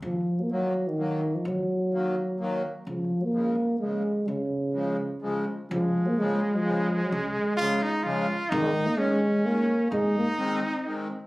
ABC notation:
X:1
M:3/4
L:1/16
Q:1/4=128
K:Db
V:1 name="Trumpet"
z12 | z12 | z12 | z12 |
A,12- | A,4 F2 E2 F4 | E4 D8 | E8- E2 z2 |]
V:2 name="Euphonium" clef=bass
F,3 B, G,3 E,4 F, | G,8- G,2 z2 | F,3 B,4- B, A,4 | D,8 z4 |
F,3 B, A,3 F,4 G, | A,8- A,2 z2 | E,3 B, A,4 B,4 | A,2 B,2 C6 z2 |]
V:3 name="Accordion" clef=bass
z4 [E,G,B,]2 z2 [E,G,B,]2 z2 | z4 [E,G,B,]2 z2 [E,G,B,]2 z2 | z4 [D,F,A,]2 z2 [D,F,A,]2 z2 | z4 [D,F,A,]2 z2 [D,F,A,]2 z2 |
z4 [D,F,A,]2 z2 [D,F,A,]2 z2 | z4 [D,F,A,]2 z2 [D,F,A,]2 z2 | z4 [E,A,D]2 z2 [E,A,D]2 z2 | z4 [E,A,C]2 z2 [E,A,C]2 z2 |]
V:4 name="Upright bass" clef=bass
E,,2 z8 z2 | E,,2 z8 z2 | D,,2 z8 z2 | D,,2 z8 z2 |
D,,2 z8 z2 | D,,2 z8 z2 | A,,,2 z8 z2 | A,,,2 z8 z2 |]